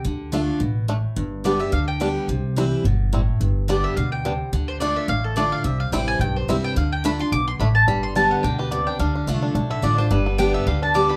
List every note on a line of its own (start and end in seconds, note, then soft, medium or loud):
0.05 0.49 D2 medium
0.05 0.31 D3 medium
0.32 0.59 D3 medium
0.32 0.59 A3 medium
0.32 0.40 A3 medium
0.32 0.60 D4 loud
0.32 0.36 D4 medium
0.32 0.60 F4 loud
0.60 1.04 A1 medium
0.60 0.87 B2 medium
0.88 1.15 A2 medium
0.88 0.96 A3 medium
0.88 0.92 D4 medium
1.16 1.60 G1 medium
1.16 1.70 G2 medium
1.44 1.59 D3 medium
1.44 1.60 G3 medium
1.44 1.52 G3 medium
1.44 1.60 B3 loud
1.44 1.52 B3 medium
1.44 1.52 D4 medium
1.44 1.58 G4 medium
1.44 1.60 D5 medium
1.59 1.72 G4 medium
1.59 1.72 E5 loud
1.72 2.16 D2 medium
1.72 1.99 D3 medium
1.72 1.87 F5 medium
1.88 2.26 G5 loud
2.00 2.27 D3 medium
2.00 2.27 G3 medium
2.00 2.08 G3 medium
2.00 2.28 B3 medium
2.00 2.08 B3 medium
2.00 2.08 D4 medium
2.00 2.28 G4 medium
2.28 2.72 C2 medium
2.28 2.82 C3 medium
2.56 2.83 E3 medium
2.56 2.84 G3 medium
2.56 2.64 G3 medium
2.56 2.84 C4 medium
2.56 2.64 C4 medium
2.56 2.84 E4 medium
2.56 2.64 E4 medium
2.84 3.28 G1 loud
2.84 3.12 B2 medium
3.13 3.39 A2 medium
3.13 3.20 G3 medium
3.13 3.20 C4 medium
3.13 3.20 E4 medium
3.40 3.84 G1 medium
3.40 3.94 G2 medium
3.68 3.95 D3 medium
3.68 3.96 G3 medium
3.68 3.76 G3 medium
3.68 3.96 B3 medium
3.68 3.76 B3 medium
3.68 3.76 D4 medium
3.68 3.96 G4 loud
3.68 3.84 D5 medium
3.84 3.96 E5 medium
3.96 4.40 D2 medium
3.96 4.24 B2 medium
3.96 4.11 F5 medium
4.12 4.50 G5 medium
4.25 4.52 C3 medium
4.25 4.32 G3 medium
4.25 4.32 B3 medium
4.25 4.32 D4 medium
4.53 4.96 D2 medium
4.53 4.79 D3 medium
4.68 4.80 C5 medium
4.80 5.07 D3 medium
4.80 5.08 A3 loud
4.80 4.88 A3 medium
4.80 5.08 D4 loud
4.80 4.84 D4 medium
4.80 5.08 F4 loud
4.80 4.95 D5 medium
4.96 5.08 E5 medium
5.08 5.52 A1 medium
5.08 5.62 A2 medium
5.08 5.24 F5 loud
5.24 5.36 A4 medium
5.36 5.63 D3 medium
5.36 5.63 A3 medium
5.36 5.43 A3 medium
5.36 5.63 D4 medium
5.36 5.39 D4 medium
5.36 5.64 F4 medium
5.36 5.51 D5 medium
5.52 5.64 F5 loud
5.64 5.86 C2 medium
5.64 6.18 C3 medium
5.64 5.80 E5 medium
5.80 5.92 F5 loud
5.92 6.16 A1 medium
5.92 6.19 E3 medium
5.92 5.99 G3 medium
5.92 6.19 G3 loud
5.92 6.00 C4 medium
5.92 6.20 C4 medium
5.92 6.00 E4 medium
5.92 6.20 E4 loud
5.92 6.07 G5 medium
6.08 6.20 G#5 loud
6.19 6.43 B1 loud
6.19 6.74 G2 medium
6.19 6.35 G5 medium
6.36 6.48 C5 medium
6.48 6.72 C2 medium
6.48 6.75 E3 medium
6.48 6.75 G3 medium
6.48 6.55 G3 medium
6.48 6.56 C4 medium
6.48 6.76 C4 medium
6.48 6.76 E4 loud
6.48 6.56 E4 medium
6.48 6.64 E5 medium
6.64 6.76 G5 loud
6.76 7.20 D2 loud
6.76 7.03 D3 medium
6.76 6.92 F5 medium
6.92 7.04 G5 medium
7.04 7.19 D3 loud
7.04 7.19 A3 loud
7.04 7.11 A3 medium
7.04 7.19 D4 loud
7.04 7.07 D4 medium
7.04 7.18 F4 loud
7.04 7.20 B5 medium
7.19 7.32 D4 soft
7.19 7.32 F4 medium
7.19 7.32 C6 loud
7.32 7.56 B1 medium
7.32 7.59 B2 medium
7.32 7.47 D6 loud
7.48 7.59 C6 loud
7.59 7.83 A1 medium
7.59 7.87 A2 medium
7.59 7.67 A3 medium
7.59 7.63 D4 medium
7.59 7.74 B5 medium
7.75 7.87 A5 loud
7.87 8.31 G1 medium
7.87 8.41 G2 medium
7.87 8.15 G3 medium
7.87 8.03 B5 medium
8.03 8.15 C6 loud
8.15 8.42 D3 medium
8.15 8.56 G3 medium
8.15 8.43 G3 medium
8.15 8.43 B3 medium
8.15 8.43 G4 medium
8.15 8.31 A5 medium
8.31 8.69 D3 medium
8.31 8.43 F#5 medium
8.43 8.87 D2 medium
8.43 8.71 B2 medium
8.43 8.87 D4 medium
8.43 8.58 G5 loud
8.59 8.97 G4 medium
8.59 8.71 B4 medium
8.71 8.98 C3 medium
8.71 8.99 B3 medium
8.71 8.86 D5 medium
8.87 9.00 D4 medium
8.87 8.99 G5 loud
8.99 9.21 D2 medium
8.99 9.26 D3 medium
8.99 9.14 D4 medium
8.99 9.26 F5 medium
9.15 9.41 D4 medium
9.27 9.51 C2 medium
9.27 9.54 D3 medium
9.27 9.68 A3 medium
9.27 9.55 A3 loud
9.27 9.55 D4 medium
9.27 9.55 F4 loud
9.43 9.54 D4 medium
9.55 9.79 B1 medium
9.55 10.09 A2 medium
9.55 9.82 D4 medium
9.70 10.09 D3 medium
9.70 9.83 E5 loud
9.82 10.07 A1 medium
9.82 9.97 D3 medium
9.82 9.98 A3 medium
9.82 9.97 D4 medium
9.82 9.98 D4 medium
9.82 9.97 F4 medium
9.82 9.98 D5 medium
9.98 10.11 D4 medium
9.98 10.11 F4 medium
9.98 10.11 C5 medium
10.11 10.54 G1 medium
10.11 10.64 G2 loud
10.11 10.95 G3 medium
10.11 10.37 B4 medium
10.26 10.53 B3 medium
10.38 10.65 D3 medium
10.38 10.66 G3 medium
10.38 10.66 B3 loud
10.38 10.79 D4 medium
10.38 10.66 G4 loud
10.38 10.54 G5 loud
10.54 10.93 B3 medium
10.54 10.67 E5 loud
10.67 11.10 D2 loud
10.67 10.93 D3 medium
10.67 11.10 G4 medium
10.67 10.82 F5 medium
10.82 11.16 D4 medium
10.82 10.95 A5 medium
10.94 11.16 D3 medium
10.94 11.16 G3 medium
10.94 11.16 B3 medium
10.94 11.16 G4 medium
10.94 11.09 D6 loud
11.09 11.16 G4 medium
11.09 11.16 B5 loud